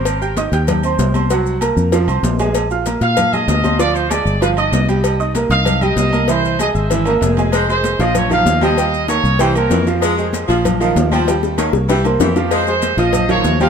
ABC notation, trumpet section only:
X:1
M:4/4
L:1/8
Q:1/4=193
K:Fm
V:1 name="Trumpet section"
z8 | z8 | z3 f2 e3 | =d c d2 =B ^d2 z |
z3 f2 e3 | c2 e =e3 ^G2 | c c2 e d f2 e- | e2 d2 c B2 z |
z8 | z6 G2 | c c2 e2 d2 f |]